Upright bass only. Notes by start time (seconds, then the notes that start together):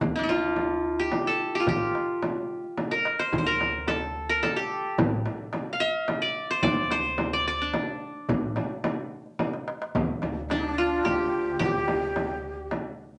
0.01 D2
1.67 A1
3.33 D2
4.99 A1
6.63 D2
8.29 A1
9.95 D2
10.23 D2
11.05 D2
11.61 D2